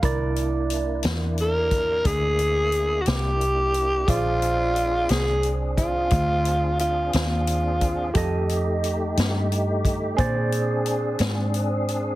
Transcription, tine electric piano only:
\new Staff \with { instrumentName = "Tine electric piano" } { \time 12/8 \key bes \major \tempo 4. = 59 <e' bes' d''>1. | <aes' c'' d''>1. | <g' a' ees''>2. <aes' c'' d''>2. | }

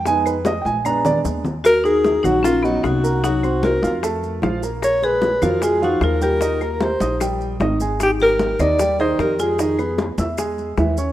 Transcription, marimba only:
\new Staff \with { instrumentName = "Marimba" } { \time 4/4 \key bes \phrygian \tempo 4 = 151 r1 | ges'8 ees'4 ees'8 des'8 ces'8 ees'4 | ees'4 ges'4 r2 | bes'8 aes'4 ges'8 f'8 ees'8 f'8 g'8~ |
g'4 g'4 r2 | ees'8 g'4 bes'4 aes'8 g'8 f'8~ | f'4. r2 r8 | }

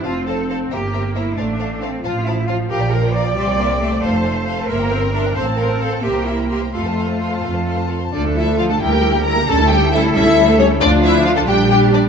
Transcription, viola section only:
\new Staff \with { instrumentName = "Viola section" } { \time 6/8 \key f \major \tempo 4. = 90 c'4. bes4. | a4. f4.~ | f4. g8 bes8 a8~ | a4. bes8 c'8 d'8 |
c'4. bes4. | a2~ a16 r8. | \key d \minor <f f'>16 <a d'>16 <f f'>16 <a d'>16 <f f'>16 <a d'>16 <g e'>16 <bes g'>16 <g e'>16 <bes g'>16 <g e'>16 <bes g'>16 | <g cis'>16 <a e'>16 <g cis'>16 <a e'>16 <g cis'>16 <a e'>16 <g cis'>16 <a e'>16 <g cis'>16 <a e'>16 <g cis'>16 <a e'>16 |
<f d'>4. <g d'>4. | }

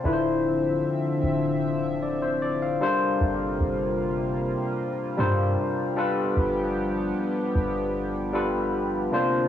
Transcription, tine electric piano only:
\new Staff \with { instrumentName = "Tine electric piano" } { \time 4/4 \key g \dorian \tempo 4 = 76 << { r2 r8 d''16 c''16 d''16 f''8 r16 | r1 | r1 | } \\ { <d d' e' f' b' c''>2 r4. <g d' f' a' bes' c''>8~ | <g d' f' a' bes' c''>4. r4 <g d' f' a' bes' c''>4 <g d' f' a' b'>8~ | <g d' f' a' b'>4. r4 <g d' f' a' b'>4 <c bes d' f' c''>8 | } >> }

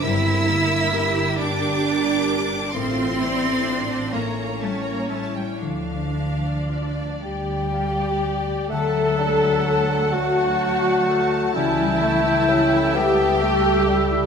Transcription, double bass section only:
\new Staff \with { instrumentName = "Double bass section" } { \clef bass \time 6/8 \key d \minor \tempo 4. = 43 g,,4. g,,4. | a,,4. a,,4. | d,4. d,4. | \key d \major d,2. |
cis,2. | }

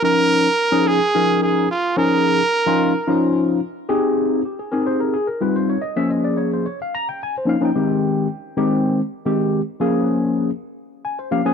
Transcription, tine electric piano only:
\new Staff \with { instrumentName = "Tine electric piano" } { \time 7/8 \key aes \major \tempo 4 = 109 << { r2. r8 | r2. r8 | r4 g'16 aes'16 bes'16 c''16 bes'16 aes'16 bes'16 ces''16 c''16 des''16 | ees''16 e''16 ees''16 d''16 des''16 c''16 des''16 f''16 bes''16 g''16 aes''16 c''16 f''16 g''16~ |
g''2~ g''16 r4 r16 | r2 r8 aes''16 c''16 f''16 aes''16 | } \\ { <f des' ees' bes'>8. r8 <f des' ees' aes'>8 r16 <f des' ees' bes'>4 r8 | <f des' ees' aes'>8. r8 <f des' ees' f'>8 r16 <f des' ees' f'>4 r8 | <c' ees' g' aes'>4 r8 <c' ees' g' aes'>8. r8 <g c' ees' f'>8. | r16 <f bes des' aes'>4~ <f bes des' aes'>16 r4. <f bes des' ees'>16 <f bes des' ees'>16 |
<ees aes c' g'>4 r8 <ees aes c' g'>8. r8 <ees aes c' g'>8. | r16 <f bes des' aes'>4~ <f bes des' aes'>16 r4. <f bes des' g'>16 <f bes des' aes'>16 | } >> }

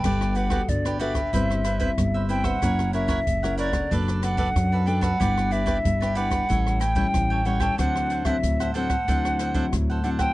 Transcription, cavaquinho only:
\new Staff \with { instrumentName = "Cavaquinho" } { \time 4/4 \key g \major \tempo 4 = 93 <g' b' d''>8 <fis' g' b' d''>16 <fis' g' b' d''>16 r16 <g' b' d''>16 <fis' g' b' d''>16 <g' b' d''>16 <e' b' c'' e''>8 <e' b' c'' e''>16 <e' b' c'' e''>16 r16 <b' c'' e''>16 <e' b' c'' e''>16 <b' c'' e''>16 | <e' ais' cis'' fis''>8 <e' ais' cis'' fis''>16 <e' ais' cis'' fis''>16 r16 <ais' cis'' fis''>16 <e' ais' cis'' fis''>16 <ais' cis'' fis''>16 <d' a' b' d''>8 <d' a' b' d''>16 <d' a' b' d''>16 r16 <a' b' d''>16 <d' a' b' d''>16 <a' b' d''>16 | <e' g' b' d''>8 <e' g' b' d''>16 <e' g' b' d''>16 r16 <g' b' d''>16 <e' g' b' d''>16 <g' b' d''>16 <e' a' cis''>8 <e' a' cis'' g''>16 <e' a' cis'' g''>16 r16 <a' cis'' g''>16 <e' a' cis'' g''>16 <a' cis'' g''>16 | <d' a' c'' fis''>8 <d' a' c'' fis''>16 <d' a' c'' fis''>16 r16 <a' c'' fis''>16 <d' a' c'' fis''>16 <a' c'' fis''>16 <d' a' c'' fis''>8 <d' a' c'' fis''>16 <d' a' c'' fis''>16 r16 <a' c'' fis''>16 <d' a' c'' fis''>16 <a' c'' fis''>16 | }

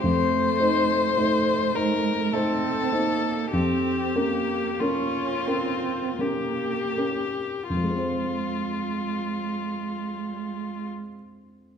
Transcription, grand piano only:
\new Staff \with { instrumentName = "Grand piano" } { \time 3/4 \key f \minor \tempo 4 = 44 f,8 <ees' c''>8 <a ees' c''>8 <ees' c''>8 <a ees' c''>8 <ees' c''>8 | f,8 <des' bes'>8 <bes des' bes'>8 <des' bes'>8 <bes des' bes'>8 <des' bes'>8 | <f, f aes c' c''>2. | }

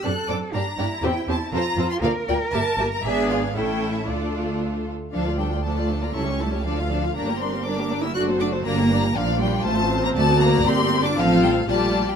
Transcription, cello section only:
\new Staff \with { instrumentName = "Cello section" } { \time 2/4 \key d \minor \tempo 4 = 119 a'4 d'8 e'8~ | e'4 f'4 | bes'2 | gis'4 e'4 |
f'4. r8 | f8 g8 a8. bes16 | cis'8 a8 f4 | bes8 c'8 d'8. e'16 |
fis'8 d'8 bes4 | \key f \major f8 g8 a8. bes16 | a8 bes8 c'8. d'16 | f8 g8 a8. g16 | }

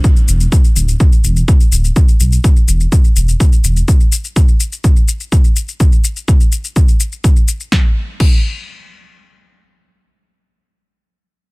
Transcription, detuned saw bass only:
\new Staff \with { instrumentName = "Detuned saw bass" } { \clef bass \time 4/4 \key e \minor \tempo 4 = 125 r8 e,,8 r8 d,,8 r8 e,,8 r8 d,,8 | r8 b,,8 r8 e,,8 r8 e,,8 r8 e,,8 | r1 | r1 |
r1 | r1 | }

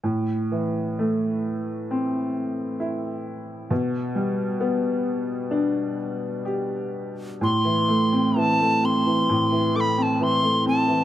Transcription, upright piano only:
\new Staff \with { instrumentName = "Upright piano" } { \time 4/4 \key a \minor \tempo 4 = 65 a,8 e8 a4 c'4 e'4 | b,8 g8 b4 d'4 g'4 | a,16 e16 a16 c'16 e16 a16 c'16 e16 a,16 e16 a16 c'16 e16 a16 c'16 e16 | }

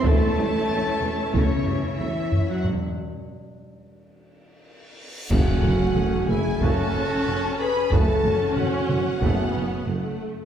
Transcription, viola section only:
\new Staff \with { instrumentName = "Viola section" } { \time 4/4 \key a \dorian \tempo 4 = 92 << { e'1 | r1 | \key fis \minor a2 cis'2 | a8 cis'4. b4 a4 | } \\ { a8 g8 a8 e8 a8 g8 a8 r8 | r1 | r1 | r1 | } >> }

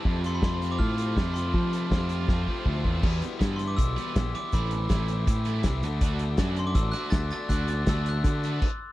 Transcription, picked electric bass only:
\new Staff \with { instrumentName = "Picked electric bass" } { \clef bass \time 4/4 \key e \minor \tempo 4 = 161 f,4 f,4 a,4 f,4 | f4 f,4 f,8 r8 d,8 e,8 | e,8 r8 g,4 b,,8 r8 ais,,8 r8 | a,,4 a,,4 a,4 c,8 d,8~ |
d,4 fis,4 a,,8 r8 d,8 r8 | d,4 d,4 d4 r4 | }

